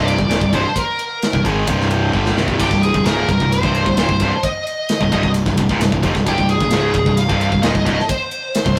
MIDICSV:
0, 0, Header, 1, 5, 480
1, 0, Start_track
1, 0, Key_signature, -3, "minor"
1, 0, Tempo, 458365
1, 794, Time_signature, 4, 2, 24, 8
1, 9205, End_track
2, 0, Start_track
2, 0, Title_t, "Lead electric guitar"
2, 0, Program_c, 0, 29
2, 60, Note_on_c, 0, 74, 88
2, 513, Note_off_c, 0, 74, 0
2, 574, Note_on_c, 0, 72, 81
2, 811, Note_off_c, 0, 72, 0
2, 813, Note_on_c, 0, 70, 75
2, 1483, Note_off_c, 0, 70, 0
2, 2726, Note_on_c, 0, 67, 72
2, 2957, Note_off_c, 0, 67, 0
2, 2961, Note_on_c, 0, 68, 77
2, 3183, Note_off_c, 0, 68, 0
2, 3201, Note_on_c, 0, 70, 87
2, 3444, Note_off_c, 0, 70, 0
2, 3456, Note_on_c, 0, 70, 70
2, 3671, Note_off_c, 0, 70, 0
2, 3686, Note_on_c, 0, 72, 81
2, 4129, Note_off_c, 0, 72, 0
2, 4177, Note_on_c, 0, 72, 95
2, 4648, Note_off_c, 0, 72, 0
2, 4652, Note_on_c, 0, 75, 83
2, 5563, Note_off_c, 0, 75, 0
2, 6580, Note_on_c, 0, 67, 96
2, 6804, Note_off_c, 0, 67, 0
2, 6808, Note_on_c, 0, 68, 100
2, 7519, Note_on_c, 0, 77, 115
2, 7543, Note_off_c, 0, 68, 0
2, 7963, Note_off_c, 0, 77, 0
2, 7987, Note_on_c, 0, 75, 88
2, 8482, Note_on_c, 0, 72, 89
2, 8484, Note_off_c, 0, 75, 0
2, 9205, Note_off_c, 0, 72, 0
2, 9205, End_track
3, 0, Start_track
3, 0, Title_t, "Distorted electric guitar"
3, 0, Program_c, 1, 30
3, 0, Note_on_c, 1, 36, 86
3, 0, Note_on_c, 1, 43, 89
3, 0, Note_on_c, 1, 48, 85
3, 177, Note_off_c, 1, 36, 0
3, 183, Note_off_c, 1, 43, 0
3, 186, Note_off_c, 1, 48, 0
3, 190, Note_on_c, 1, 36, 50
3, 201, Note_on_c, 1, 43, 66
3, 302, Note_off_c, 1, 36, 0
3, 306, Note_on_c, 1, 39, 77
3, 307, Note_off_c, 1, 43, 0
3, 311, Note_on_c, 1, 46, 85
3, 423, Note_off_c, 1, 39, 0
3, 425, Note_off_c, 1, 46, 0
3, 432, Note_on_c, 1, 36, 65
3, 438, Note_on_c, 1, 43, 76
3, 543, Note_off_c, 1, 36, 0
3, 546, Note_off_c, 1, 43, 0
3, 556, Note_on_c, 1, 36, 73
3, 558, Note_on_c, 1, 43, 83
3, 668, Note_off_c, 1, 36, 0
3, 669, Note_off_c, 1, 43, 0
3, 1410, Note_on_c, 1, 36, 58
3, 1415, Note_on_c, 1, 43, 66
3, 1509, Note_off_c, 1, 36, 0
3, 1513, Note_on_c, 1, 44, 89
3, 1517, Note_off_c, 1, 43, 0
3, 1521, Note_on_c, 1, 51, 89
3, 1522, Note_on_c, 1, 56, 90
3, 1747, Note_off_c, 1, 44, 0
3, 1751, Note_off_c, 1, 51, 0
3, 1752, Note_off_c, 1, 56, 0
3, 1753, Note_on_c, 1, 36, 79
3, 1758, Note_on_c, 1, 43, 92
3, 1767, Note_on_c, 1, 48, 93
3, 2224, Note_off_c, 1, 43, 0
3, 2228, Note_off_c, 1, 36, 0
3, 2235, Note_off_c, 1, 48, 0
3, 2236, Note_on_c, 1, 43, 77
3, 2246, Note_on_c, 1, 50, 77
3, 2252, Note_on_c, 1, 55, 87
3, 2469, Note_off_c, 1, 43, 0
3, 2474, Note_off_c, 1, 50, 0
3, 2474, Note_on_c, 1, 36, 72
3, 2477, Note_off_c, 1, 55, 0
3, 2481, Note_on_c, 1, 43, 87
3, 2490, Note_on_c, 1, 48, 73
3, 2708, Note_off_c, 1, 36, 0
3, 2712, Note_off_c, 1, 43, 0
3, 2716, Note_off_c, 1, 48, 0
3, 2726, Note_on_c, 1, 36, 97
3, 2729, Note_on_c, 1, 43, 112
3, 2834, Note_off_c, 1, 36, 0
3, 2836, Note_off_c, 1, 43, 0
3, 2847, Note_on_c, 1, 36, 55
3, 2850, Note_on_c, 1, 43, 59
3, 3034, Note_off_c, 1, 36, 0
3, 3036, Note_off_c, 1, 43, 0
3, 3084, Note_on_c, 1, 36, 58
3, 3097, Note_on_c, 1, 43, 68
3, 3194, Note_off_c, 1, 36, 0
3, 3198, Note_on_c, 1, 37, 86
3, 3199, Note_off_c, 1, 43, 0
3, 3203, Note_on_c, 1, 44, 94
3, 3216, Note_on_c, 1, 49, 85
3, 3431, Note_off_c, 1, 37, 0
3, 3433, Note_off_c, 1, 44, 0
3, 3440, Note_off_c, 1, 49, 0
3, 3445, Note_on_c, 1, 36, 60
3, 3455, Note_on_c, 1, 43, 71
3, 3562, Note_off_c, 1, 36, 0
3, 3566, Note_off_c, 1, 43, 0
3, 3580, Note_on_c, 1, 36, 66
3, 3582, Note_on_c, 1, 43, 68
3, 3761, Note_off_c, 1, 36, 0
3, 3762, Note_off_c, 1, 43, 0
3, 3810, Note_on_c, 1, 36, 84
3, 3818, Note_on_c, 1, 43, 86
3, 3820, Note_on_c, 1, 48, 83
3, 4032, Note_off_c, 1, 43, 0
3, 4034, Note_off_c, 1, 36, 0
3, 4042, Note_off_c, 1, 48, 0
3, 4045, Note_on_c, 1, 43, 59
3, 4047, Note_on_c, 1, 36, 59
3, 4162, Note_off_c, 1, 43, 0
3, 4163, Note_off_c, 1, 36, 0
3, 4177, Note_on_c, 1, 39, 69
3, 4178, Note_on_c, 1, 46, 90
3, 4280, Note_off_c, 1, 39, 0
3, 4281, Note_off_c, 1, 46, 0
3, 4299, Note_on_c, 1, 43, 71
3, 4303, Note_on_c, 1, 36, 64
3, 4407, Note_off_c, 1, 36, 0
3, 4409, Note_off_c, 1, 43, 0
3, 4419, Note_on_c, 1, 36, 82
3, 4433, Note_on_c, 1, 43, 76
3, 4522, Note_off_c, 1, 36, 0
3, 4529, Note_off_c, 1, 43, 0
3, 5246, Note_on_c, 1, 36, 57
3, 5246, Note_on_c, 1, 43, 57
3, 5346, Note_off_c, 1, 36, 0
3, 5350, Note_off_c, 1, 43, 0
3, 5359, Note_on_c, 1, 36, 84
3, 5362, Note_on_c, 1, 43, 85
3, 5463, Note_off_c, 1, 36, 0
3, 5468, Note_off_c, 1, 43, 0
3, 5475, Note_on_c, 1, 36, 67
3, 5481, Note_on_c, 1, 43, 68
3, 5669, Note_off_c, 1, 36, 0
3, 5671, Note_off_c, 1, 43, 0
3, 5725, Note_on_c, 1, 36, 67
3, 5731, Note_on_c, 1, 43, 68
3, 5836, Note_off_c, 1, 36, 0
3, 5845, Note_off_c, 1, 43, 0
3, 5848, Note_on_c, 1, 36, 52
3, 5857, Note_on_c, 1, 43, 64
3, 5963, Note_off_c, 1, 36, 0
3, 5968, Note_off_c, 1, 43, 0
3, 5977, Note_on_c, 1, 37, 72
3, 5979, Note_on_c, 1, 44, 91
3, 6080, Note_off_c, 1, 37, 0
3, 6081, Note_off_c, 1, 44, 0
3, 6100, Note_on_c, 1, 36, 56
3, 6106, Note_on_c, 1, 43, 62
3, 6209, Note_off_c, 1, 36, 0
3, 6212, Note_off_c, 1, 43, 0
3, 6226, Note_on_c, 1, 43, 76
3, 6227, Note_on_c, 1, 36, 66
3, 6321, Note_off_c, 1, 36, 0
3, 6325, Note_on_c, 1, 41, 86
3, 6332, Note_off_c, 1, 43, 0
3, 6336, Note_on_c, 1, 48, 83
3, 6434, Note_off_c, 1, 41, 0
3, 6439, Note_off_c, 1, 48, 0
3, 6454, Note_on_c, 1, 36, 59
3, 6459, Note_on_c, 1, 43, 71
3, 6565, Note_off_c, 1, 36, 0
3, 6568, Note_off_c, 1, 43, 0
3, 6577, Note_on_c, 1, 36, 100
3, 6583, Note_on_c, 1, 43, 117
3, 6680, Note_off_c, 1, 36, 0
3, 6683, Note_off_c, 1, 43, 0
3, 6701, Note_on_c, 1, 36, 69
3, 6706, Note_on_c, 1, 43, 65
3, 6881, Note_off_c, 1, 36, 0
3, 6883, Note_off_c, 1, 43, 0
3, 6924, Note_on_c, 1, 36, 56
3, 6937, Note_on_c, 1, 43, 66
3, 7037, Note_off_c, 1, 36, 0
3, 7039, Note_off_c, 1, 43, 0
3, 7041, Note_on_c, 1, 37, 89
3, 7043, Note_on_c, 1, 44, 82
3, 7049, Note_on_c, 1, 49, 83
3, 7271, Note_off_c, 1, 37, 0
3, 7272, Note_off_c, 1, 44, 0
3, 7275, Note_off_c, 1, 49, 0
3, 7279, Note_on_c, 1, 36, 62
3, 7284, Note_on_c, 1, 43, 66
3, 7384, Note_off_c, 1, 36, 0
3, 7384, Note_off_c, 1, 43, 0
3, 7396, Note_on_c, 1, 36, 65
3, 7397, Note_on_c, 1, 43, 69
3, 7588, Note_off_c, 1, 36, 0
3, 7588, Note_off_c, 1, 43, 0
3, 7631, Note_on_c, 1, 36, 93
3, 7634, Note_on_c, 1, 43, 92
3, 7638, Note_on_c, 1, 48, 87
3, 7858, Note_off_c, 1, 43, 0
3, 7862, Note_off_c, 1, 36, 0
3, 7869, Note_off_c, 1, 48, 0
3, 7870, Note_on_c, 1, 43, 63
3, 7874, Note_on_c, 1, 36, 62
3, 7974, Note_off_c, 1, 36, 0
3, 7978, Note_on_c, 1, 39, 85
3, 7988, Note_off_c, 1, 43, 0
3, 7992, Note_on_c, 1, 46, 90
3, 8099, Note_off_c, 1, 39, 0
3, 8106, Note_off_c, 1, 46, 0
3, 8112, Note_on_c, 1, 36, 63
3, 8115, Note_on_c, 1, 43, 63
3, 8208, Note_off_c, 1, 36, 0
3, 8221, Note_on_c, 1, 36, 80
3, 8222, Note_off_c, 1, 43, 0
3, 8235, Note_on_c, 1, 43, 87
3, 8340, Note_off_c, 1, 36, 0
3, 8347, Note_off_c, 1, 43, 0
3, 9070, Note_on_c, 1, 36, 60
3, 9070, Note_on_c, 1, 43, 64
3, 9189, Note_off_c, 1, 36, 0
3, 9190, Note_off_c, 1, 43, 0
3, 9205, End_track
4, 0, Start_track
4, 0, Title_t, "Picked electric bass"
4, 0, Program_c, 2, 34
4, 0, Note_on_c, 2, 24, 88
4, 176, Note_off_c, 2, 24, 0
4, 197, Note_on_c, 2, 24, 69
4, 293, Note_off_c, 2, 24, 0
4, 300, Note_on_c, 2, 27, 89
4, 418, Note_off_c, 2, 27, 0
4, 429, Note_on_c, 2, 24, 72
4, 543, Note_off_c, 2, 24, 0
4, 555, Note_on_c, 2, 24, 83
4, 666, Note_off_c, 2, 24, 0
4, 1397, Note_on_c, 2, 24, 71
4, 1508, Note_off_c, 2, 24, 0
4, 1523, Note_on_c, 2, 32, 87
4, 1743, Note_off_c, 2, 32, 0
4, 1756, Note_on_c, 2, 24, 97
4, 2203, Note_off_c, 2, 24, 0
4, 2235, Note_on_c, 2, 31, 94
4, 2453, Note_off_c, 2, 31, 0
4, 2459, Note_on_c, 2, 24, 92
4, 2691, Note_off_c, 2, 24, 0
4, 2716, Note_on_c, 2, 24, 85
4, 2828, Note_off_c, 2, 24, 0
4, 2834, Note_on_c, 2, 24, 62
4, 3059, Note_off_c, 2, 24, 0
4, 3084, Note_on_c, 2, 24, 61
4, 3179, Note_off_c, 2, 24, 0
4, 3185, Note_on_c, 2, 25, 82
4, 3415, Note_off_c, 2, 25, 0
4, 3440, Note_on_c, 2, 24, 66
4, 3551, Note_off_c, 2, 24, 0
4, 3564, Note_on_c, 2, 24, 78
4, 3785, Note_off_c, 2, 24, 0
4, 3804, Note_on_c, 2, 24, 87
4, 4024, Note_off_c, 2, 24, 0
4, 4043, Note_on_c, 2, 24, 70
4, 4132, Note_off_c, 2, 24, 0
4, 4139, Note_on_c, 2, 27, 88
4, 4259, Note_off_c, 2, 27, 0
4, 4279, Note_on_c, 2, 24, 74
4, 4390, Note_off_c, 2, 24, 0
4, 4396, Note_on_c, 2, 24, 82
4, 4509, Note_off_c, 2, 24, 0
4, 5245, Note_on_c, 2, 24, 82
4, 5354, Note_off_c, 2, 24, 0
4, 5363, Note_on_c, 2, 24, 86
4, 5473, Note_off_c, 2, 24, 0
4, 5477, Note_on_c, 2, 24, 71
4, 5701, Note_off_c, 2, 24, 0
4, 5714, Note_on_c, 2, 24, 75
4, 5827, Note_off_c, 2, 24, 0
4, 5845, Note_on_c, 2, 24, 73
4, 5951, Note_off_c, 2, 24, 0
4, 5957, Note_on_c, 2, 25, 88
4, 6066, Note_off_c, 2, 25, 0
4, 6072, Note_on_c, 2, 24, 79
4, 6186, Note_off_c, 2, 24, 0
4, 6202, Note_on_c, 2, 24, 81
4, 6311, Note_off_c, 2, 24, 0
4, 6324, Note_on_c, 2, 29, 80
4, 6432, Note_off_c, 2, 29, 0
4, 6439, Note_on_c, 2, 24, 74
4, 6550, Note_off_c, 2, 24, 0
4, 6563, Note_on_c, 2, 24, 84
4, 6672, Note_off_c, 2, 24, 0
4, 6681, Note_on_c, 2, 24, 76
4, 6902, Note_off_c, 2, 24, 0
4, 6920, Note_on_c, 2, 24, 70
4, 7030, Note_off_c, 2, 24, 0
4, 7036, Note_on_c, 2, 25, 86
4, 7259, Note_off_c, 2, 25, 0
4, 7272, Note_on_c, 2, 24, 75
4, 7385, Note_off_c, 2, 24, 0
4, 7392, Note_on_c, 2, 24, 71
4, 7617, Note_off_c, 2, 24, 0
4, 7637, Note_on_c, 2, 24, 90
4, 7859, Note_off_c, 2, 24, 0
4, 7874, Note_on_c, 2, 24, 72
4, 7986, Note_off_c, 2, 24, 0
4, 7999, Note_on_c, 2, 27, 91
4, 8105, Note_off_c, 2, 27, 0
4, 8111, Note_on_c, 2, 24, 77
4, 8224, Note_off_c, 2, 24, 0
4, 8239, Note_on_c, 2, 24, 91
4, 8348, Note_off_c, 2, 24, 0
4, 9065, Note_on_c, 2, 24, 69
4, 9174, Note_off_c, 2, 24, 0
4, 9205, End_track
5, 0, Start_track
5, 0, Title_t, "Drums"
5, 82, Note_on_c, 9, 51, 67
5, 187, Note_off_c, 9, 51, 0
5, 194, Note_on_c, 9, 36, 75
5, 299, Note_off_c, 9, 36, 0
5, 320, Note_on_c, 9, 51, 84
5, 330, Note_on_c, 9, 38, 103
5, 425, Note_off_c, 9, 51, 0
5, 434, Note_on_c, 9, 36, 83
5, 435, Note_off_c, 9, 38, 0
5, 539, Note_off_c, 9, 36, 0
5, 553, Note_on_c, 9, 36, 78
5, 556, Note_on_c, 9, 51, 71
5, 658, Note_off_c, 9, 36, 0
5, 661, Note_off_c, 9, 51, 0
5, 794, Note_on_c, 9, 36, 99
5, 800, Note_on_c, 9, 51, 101
5, 898, Note_off_c, 9, 36, 0
5, 905, Note_off_c, 9, 51, 0
5, 1036, Note_on_c, 9, 51, 67
5, 1141, Note_off_c, 9, 51, 0
5, 1281, Note_on_c, 9, 51, 81
5, 1291, Note_on_c, 9, 38, 98
5, 1386, Note_off_c, 9, 51, 0
5, 1395, Note_off_c, 9, 38, 0
5, 1396, Note_on_c, 9, 36, 79
5, 1501, Note_off_c, 9, 36, 0
5, 1517, Note_on_c, 9, 36, 67
5, 1524, Note_on_c, 9, 51, 64
5, 1622, Note_off_c, 9, 36, 0
5, 1629, Note_off_c, 9, 51, 0
5, 1751, Note_on_c, 9, 51, 87
5, 1755, Note_on_c, 9, 36, 109
5, 1856, Note_off_c, 9, 51, 0
5, 1860, Note_off_c, 9, 36, 0
5, 1893, Note_on_c, 9, 38, 29
5, 1995, Note_on_c, 9, 51, 63
5, 1997, Note_off_c, 9, 38, 0
5, 2100, Note_off_c, 9, 51, 0
5, 2235, Note_on_c, 9, 36, 55
5, 2340, Note_off_c, 9, 36, 0
5, 2366, Note_on_c, 9, 38, 64
5, 2471, Note_off_c, 9, 38, 0
5, 2484, Note_on_c, 9, 38, 75
5, 2588, Note_off_c, 9, 38, 0
5, 2596, Note_on_c, 9, 36, 74
5, 2700, Note_off_c, 9, 36, 0
5, 2718, Note_on_c, 9, 36, 90
5, 2722, Note_on_c, 9, 49, 87
5, 2722, Note_on_c, 9, 51, 85
5, 2823, Note_off_c, 9, 36, 0
5, 2826, Note_off_c, 9, 49, 0
5, 2826, Note_off_c, 9, 51, 0
5, 2838, Note_on_c, 9, 36, 86
5, 2942, Note_off_c, 9, 36, 0
5, 2964, Note_on_c, 9, 51, 65
5, 3068, Note_off_c, 9, 51, 0
5, 3082, Note_on_c, 9, 36, 91
5, 3186, Note_off_c, 9, 36, 0
5, 3200, Note_on_c, 9, 51, 78
5, 3210, Note_on_c, 9, 38, 105
5, 3305, Note_off_c, 9, 51, 0
5, 3315, Note_off_c, 9, 38, 0
5, 3442, Note_on_c, 9, 36, 82
5, 3447, Note_on_c, 9, 51, 56
5, 3547, Note_off_c, 9, 36, 0
5, 3551, Note_off_c, 9, 51, 0
5, 3563, Note_on_c, 9, 36, 70
5, 3668, Note_off_c, 9, 36, 0
5, 3689, Note_on_c, 9, 51, 86
5, 3794, Note_off_c, 9, 51, 0
5, 3804, Note_on_c, 9, 36, 93
5, 3909, Note_off_c, 9, 36, 0
5, 3923, Note_on_c, 9, 51, 67
5, 4028, Note_off_c, 9, 51, 0
5, 4044, Note_on_c, 9, 36, 82
5, 4148, Note_off_c, 9, 36, 0
5, 4157, Note_on_c, 9, 51, 88
5, 4166, Note_on_c, 9, 38, 99
5, 4262, Note_off_c, 9, 51, 0
5, 4271, Note_off_c, 9, 38, 0
5, 4281, Note_on_c, 9, 36, 80
5, 4386, Note_off_c, 9, 36, 0
5, 4395, Note_on_c, 9, 51, 72
5, 4400, Note_on_c, 9, 36, 72
5, 4500, Note_off_c, 9, 51, 0
5, 4505, Note_off_c, 9, 36, 0
5, 4642, Note_on_c, 9, 36, 97
5, 4643, Note_on_c, 9, 51, 93
5, 4747, Note_off_c, 9, 36, 0
5, 4747, Note_off_c, 9, 51, 0
5, 4887, Note_on_c, 9, 51, 63
5, 4992, Note_off_c, 9, 51, 0
5, 5119, Note_on_c, 9, 51, 101
5, 5129, Note_on_c, 9, 38, 105
5, 5224, Note_off_c, 9, 51, 0
5, 5233, Note_off_c, 9, 38, 0
5, 5243, Note_on_c, 9, 36, 75
5, 5348, Note_off_c, 9, 36, 0
5, 5362, Note_on_c, 9, 36, 82
5, 5364, Note_on_c, 9, 51, 64
5, 5467, Note_off_c, 9, 36, 0
5, 5469, Note_off_c, 9, 51, 0
5, 5480, Note_on_c, 9, 36, 64
5, 5585, Note_off_c, 9, 36, 0
5, 5593, Note_on_c, 9, 51, 94
5, 5698, Note_off_c, 9, 51, 0
5, 5720, Note_on_c, 9, 36, 86
5, 5722, Note_on_c, 9, 38, 30
5, 5824, Note_off_c, 9, 36, 0
5, 5827, Note_off_c, 9, 38, 0
5, 5837, Note_on_c, 9, 51, 72
5, 5842, Note_on_c, 9, 36, 80
5, 5942, Note_off_c, 9, 51, 0
5, 5947, Note_off_c, 9, 36, 0
5, 5962, Note_on_c, 9, 36, 81
5, 6067, Note_off_c, 9, 36, 0
5, 6082, Note_on_c, 9, 51, 85
5, 6091, Note_on_c, 9, 38, 104
5, 6186, Note_off_c, 9, 51, 0
5, 6196, Note_off_c, 9, 38, 0
5, 6202, Note_on_c, 9, 36, 89
5, 6307, Note_off_c, 9, 36, 0
5, 6315, Note_on_c, 9, 51, 68
5, 6320, Note_on_c, 9, 36, 79
5, 6420, Note_off_c, 9, 51, 0
5, 6425, Note_off_c, 9, 36, 0
5, 6439, Note_on_c, 9, 36, 80
5, 6445, Note_on_c, 9, 38, 31
5, 6544, Note_off_c, 9, 36, 0
5, 6550, Note_off_c, 9, 38, 0
5, 6561, Note_on_c, 9, 36, 94
5, 6561, Note_on_c, 9, 51, 82
5, 6665, Note_off_c, 9, 51, 0
5, 6666, Note_off_c, 9, 36, 0
5, 6681, Note_on_c, 9, 36, 82
5, 6786, Note_off_c, 9, 36, 0
5, 6794, Note_on_c, 9, 51, 64
5, 6899, Note_off_c, 9, 51, 0
5, 6917, Note_on_c, 9, 36, 92
5, 7022, Note_off_c, 9, 36, 0
5, 7022, Note_on_c, 9, 51, 84
5, 7031, Note_on_c, 9, 38, 108
5, 7127, Note_off_c, 9, 51, 0
5, 7136, Note_off_c, 9, 38, 0
5, 7265, Note_on_c, 9, 51, 58
5, 7276, Note_on_c, 9, 36, 86
5, 7369, Note_off_c, 9, 51, 0
5, 7381, Note_off_c, 9, 36, 0
5, 7395, Note_on_c, 9, 36, 77
5, 7500, Note_off_c, 9, 36, 0
5, 7510, Note_on_c, 9, 51, 95
5, 7615, Note_off_c, 9, 51, 0
5, 7639, Note_on_c, 9, 36, 98
5, 7744, Note_off_c, 9, 36, 0
5, 7759, Note_on_c, 9, 51, 63
5, 7863, Note_off_c, 9, 51, 0
5, 7876, Note_on_c, 9, 36, 82
5, 7981, Note_off_c, 9, 36, 0
5, 7989, Note_on_c, 9, 51, 86
5, 7998, Note_on_c, 9, 38, 106
5, 8093, Note_off_c, 9, 51, 0
5, 8103, Note_off_c, 9, 38, 0
5, 8116, Note_on_c, 9, 36, 85
5, 8220, Note_off_c, 9, 36, 0
5, 8236, Note_on_c, 9, 36, 81
5, 8236, Note_on_c, 9, 51, 62
5, 8341, Note_off_c, 9, 36, 0
5, 8341, Note_off_c, 9, 51, 0
5, 8373, Note_on_c, 9, 38, 34
5, 8473, Note_on_c, 9, 51, 94
5, 8475, Note_on_c, 9, 36, 101
5, 8478, Note_off_c, 9, 38, 0
5, 8578, Note_off_c, 9, 51, 0
5, 8579, Note_off_c, 9, 36, 0
5, 8704, Note_on_c, 9, 51, 65
5, 8809, Note_off_c, 9, 51, 0
5, 8949, Note_on_c, 9, 51, 99
5, 8959, Note_on_c, 9, 38, 97
5, 9054, Note_off_c, 9, 51, 0
5, 9064, Note_off_c, 9, 38, 0
5, 9067, Note_on_c, 9, 36, 83
5, 9171, Note_off_c, 9, 36, 0
5, 9205, End_track
0, 0, End_of_file